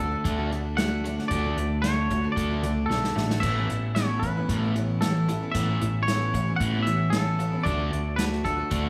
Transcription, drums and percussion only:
0.25 kick loud
0.25 closed hi-hat medium
0.52 closed hi-hat medium
0.78 snare loud
0.78 closed hi-hat medium
1.05 closed hi-hat medium
1.19 snare soft
1.31 kick medium
1.31 closed hi-hat medium
1.58 closed hi-hat medium
1.84 snare loud
1.84 closed hi-hat medium
2.10 kick medium
2.10 closed hi-hat medium
2.37 kick loud
2.37 closed hi-hat medium
2.63 closed hi-hat medium
2.90 snare medium
3.04 snare medium
3.17 snare medium
3.30 snare medium
3.43 kick loud
3.43 closed hi-hat medium
3.43 crash medium
3.70 closed hi-hat medium
3.96 snare loud
3.96 closed hi-hat medium
4.23 kick medium
4.23 closed hi-hat medium
4.49 kick loud
4.49 closed hi-hat medium
4.76 closed hi-hat medium
5.02 snare loud
5.02 closed hi-hat medium
5.29 closed hi-hat medium
5.55 kick loud
5.55 closed hi-hat medium
5.81 closed hi-hat medium
6.08 snare loud
6.08 closed hi-hat medium
6.34 kick medium
6.34 closed hi-hat medium
6.60 kick loud
6.60 closed hi-hat medium
6.87 closed hi-hat medium
7.13 snare medium
7.13 closed hi-hat medium
7.40 closed hi-hat soft
7.66 kick loud
7.66 closed hi-hat medium
7.93 closed hi-hat medium
8.19 snare loud
8.19 closed hi-hat medium
8.33 snare soft
8.45 kick medium
8.45 closed hi-hat soft
8.71 kick loud
8.71 closed hi-hat medium

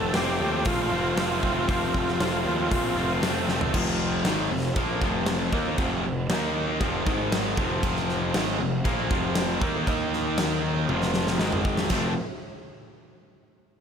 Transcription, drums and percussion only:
0.14 snare loud
0.14 open hi-hat medium
0.65 kick loud
0.65 open hi-hat medium
1.18 snare loud
1.18 open hi-hat medium
1.43 kick medium
1.69 kick loud
1.69 open hi-hat medium
1.94 kick medium
2.08 snare soft
2.20 snare loud
2.20 open hi-hat medium
2.71 kick loud
2.71 open hi-hat medium
3.23 snare loud
3.23 open hi-hat medium
3.48 snare medium
3.61 floor tom medium
3.74 kick loud
3.74 crash loud
3.74 crash medium
3.88 snare soft
4.25 snare loud
4.25 crash medium
4.76 kick loud
4.76 crash medium
5.02 kick loud
5.26 snare loud
5.26 crash medium
5.53 kick loud
5.78 kick loud
5.78 crash medium
6.30 snare loud
6.30 crash medium
6.81 kick loud
6.81 crash medium
7.07 kick loud
7.32 snare loud
7.32 crash medium
7.57 kick loud
7.83 kick loud
7.83 crash medium
7.96 snare soft
8.09 snare soft
8.34 snare loud
8.34 crash medium
8.85 kick loud
8.85 crash medium
9.11 kick loud
9.35 snare loud
9.35 crash medium
9.62 kick loud
9.87 kick loud
9.87 crash medium
10.13 snare soft
10.38 snare loud
10.38 crash medium
10.89 high tom medium
11.02 snare medium
11.14 snare medium
11.27 snare medium
11.39 snare medium
11.52 mid tom medium
11.65 kick loud
11.77 snare loud
11.90 kick loud
11.90 snare loud
11.90 crash medium

